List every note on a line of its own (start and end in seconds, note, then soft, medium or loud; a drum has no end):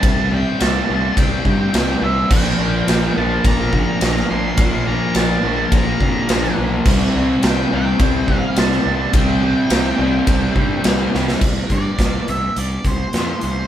0.00 0.44 C2 medium
0.00 0.30 C3 medium
0.00 0.31 G3 medium
0.00 0.31 C4 loud
0.00 0.29 A5 loud
0.00 kick loud
0.00 ride bell medium
0.31 0.58 C3 medium
0.31 0.59 G3 medium
0.31 0.60 C4 loud
0.31 0.59 G5 loud
0.59 0.81 C2 loud
0.59 0.86 C3 loud
0.59 0.88 G3 medium
0.59 0.88 C4 loud
0.59 1.19 A5 loud
0.59 snare loud
0.59 ride bell medium
0.88 1.10 C2 medium
0.88 1.15 C3 medium
0.88 1.16 G3 loud
0.88 1.17 C4 medium
1.16 1.37 C2 medium
1.16 1.43 C3 medium
1.16 1.44 G3 loud
1.16 1.45 C4 medium
1.16 2.03 G5 medium
1.16 kick loud
1.16 ride bell medium
1.44 1.66 G2 loud
1.44 1.71 C3 loud
1.44 1.73 G3 loud
1.44 1.73 C4 loud
1.44 kick medium
1.73 1.94 C2 loud
1.73 2.01 C3 medium
1.73 2.01 G3 medium
1.73 2.02 C4 medium
1.73 snare loud
1.73 ride bell medium
2.01 2.22 C2 medium
2.01 2.29 C3 medium
2.01 2.29 G3 medium
2.01 2.30 C4 medium
2.01 2.30 E5 medium
2.30 2.51 A#1 medium
2.30 2.58 A#2 medium
2.30 2.58 F3 loud
2.30 2.59 A#3 loud
2.30 3.13 G5 loud
2.30 kick loud
2.30 crash loud
2.58 2.79 A#1 medium
2.58 2.86 A#2 medium
2.58 2.87 F3 medium
2.58 2.88 A#3 medium
2.87 3.08 A#1 medium
2.87 3.15 A#2 medium
2.87 3.16 F3 loud
2.87 3.17 A#3 loud
2.87 snare loud
2.87 ride bell medium
3.16 3.37 A#1 medium
3.16 3.43 A#2 medium
3.16 3.44 F3 medium
3.16 3.45 A#3 medium
3.16 3.44 A5 medium
3.44 3.85 A#1 loud
3.44 3.71 A#2 loud
3.44 3.72 F3 loud
3.44 3.73 A#3 medium
3.44 4.30 A#5 medium
3.44 kick loud
3.44 ride bell medium
3.72 3.99 A#2 medium
3.72 4.00 F3 loud
3.72 4.00 A#3 loud
3.72 kick medium
4.00 4.22 A#1 loud
4.00 4.28 A#2 medium
4.00 4.29 F3 medium
4.00 4.29 A#3 medium
4.00 snare loud
4.00 ride bell medium
4.17 snare soft
4.29 4.51 A#1 medium
4.29 4.57 A#2 medium
4.29 4.59 F3 medium
4.29 4.59 A#3 medium
4.29 4.87 C6 loud
4.58 4.98 A#1 medium
4.58 4.85 A#2 medium
4.58 4.86 F3 loud
4.58 4.87 A#3 loud
4.58 kick loud
4.58 ride bell medium
4.86 5.15 A#2 medium
4.86 5.15 F3 loud
4.86 5.16 A#3 medium
4.86 5.16 A#5 medium
5.15 5.35 A#1 loud
5.15 5.42 A#2 medium
5.15 5.43 F3 loud
5.15 5.44 A#3 loud
5.15 5.74 A5 medium
5.15 snare loud
5.15 ride bell medium
5.43 5.64 A#1 loud
5.43 5.71 A#2 medium
5.43 5.72 F3 medium
5.43 5.72 A#3 medium
5.72 5.92 A#1 medium
5.72 5.98 A#2 medium
5.72 5.99 F3 medium
5.72 6.00 A#3 medium
5.72 6.55 A#5 medium
5.72 kick loud
5.72 ride bell medium
6.00 6.20 F2 medium
6.00 6.28 A#2 loud
6.00 6.28 F3 loud
6.00 6.29 A#3 loud
6.00 kick medium
6.29 6.49 A#1 loud
6.29 6.55 A#2 medium
6.29 6.56 F3 medium
6.29 6.57 A#3 medium
6.29 snare loud
6.29 ride bell medium
6.44 snare soft
6.57 6.78 B1 loud
6.57 6.84 A#2 loud
6.57 6.84 F3 medium
6.57 6.85 A#3 loud
6.86 7.06 C2 loud
6.86 7.15 C3 medium
6.86 7.15 G3 loud
6.86 7.16 C4 loud
6.86 kick loud
6.86 crash loud
7.15 7.35 C2 loud
7.15 7.42 C3 medium
7.15 7.43 G3 medium
7.15 7.44 C4 loud
7.42 7.64 C2 loud
7.42 7.71 C3 loud
7.42 7.72 G3 loud
7.42 7.72 C4 loud
7.42 snare loud
7.42 ride bell medium
7.47 7.74 G5 loud
7.72 7.92 C2 medium
7.72 7.99 C3 medium
7.72 8.00 G3 medium
7.72 8.01 C4 loud
7.72 8.37 G5 loud
7.99 8.40 C2 loud
7.99 8.27 C3 medium
7.99 8.28 G3 medium
7.99 8.29 C4 loud
7.99 kick loud
7.99 ride bell medium
8.28 8.56 C3 loud
8.28 8.57 G3 loud
8.28 8.58 C4 loud
8.28 kick medium
8.37 8.59 F5 loud
8.56 8.77 C2 medium
8.56 8.85 C3 medium
8.56 8.86 G3 medium
8.56 8.87 C4 medium
8.56 9.11 A5 loud
8.56 snare loud
8.56 ride bell medium
8.72 snare soft
8.85 9.06 C2 medium
8.85 9.12 C3 medium
8.85 9.13 G3 medium
8.85 9.14 C4 loud
9.13 9.54 C2 medium
9.13 9.41 C3 loud
9.13 9.41 G3 loud
9.13 9.42 C4 loud
9.13 11.11 G5 medium
9.13 kick loud
9.13 ride bell medium
9.42 9.69 C3 medium
9.42 9.70 G3 medium
9.42 9.71 C4 medium
9.70 9.91 C2 loud
9.70 9.97 C3 loud
9.70 9.98 G3 loud
9.70 9.99 C4 loud
9.70 snare loud
9.70 ride bell medium
9.98 10.19 C2 medium
9.98 10.26 C3 medium
9.98 10.27 G3 medium
9.98 10.27 C4 medium
10.27 10.48 C2 medium
10.27 10.55 C3 loud
10.27 10.56 G3 medium
10.27 10.56 C4 medium
10.27 kick loud
10.27 ride bell medium
10.56 10.76 G2 medium
10.56 10.84 C3 loud
10.56 10.85 G3 loud
10.56 10.86 C4 loud
10.56 kick medium
10.84 11.05 C2 medium
10.84 11.12 C3 medium
10.84 11.13 G3 medium
10.84 11.14 C4 medium
10.84 snare loud
10.84 ride bell medium
11.13 11.34 C2 medium
11.13 11.40 C3 medium
11.13 11.41 G3 loud
11.13 11.41 C4 medium
11.13 snare medium
11.28 snare loud
11.41 11.61 C2 medium
11.41 kick loud
11.41 crash loud
11.70 11.89 G2 medium
11.70 12.29 D5 medium
11.70 kick medium
11.70 closed hi-hat medium
11.99 12.18 C2 medium
11.99 kick loud
11.99 snare loud
11.99 closed hi-hat medium
12.28 12.47 C2 medium
12.28 12.56 E5 medium
12.28 closed hi-hat medium
12.56 12.76 C2 medium
12.56 12.87 D5 medium
12.56 closed hi-hat medium
12.85 13.04 C2 medium
12.85 13.43 C5 medium
12.85 kick medium
12.85 closed hi-hat medium
13.13 13.33 F2 medium
13.13 snare medium
13.13 closed hi-hat medium
13.41 13.62 C2 medium
13.41 13.67 C5 medium
13.41 closed hi-hat medium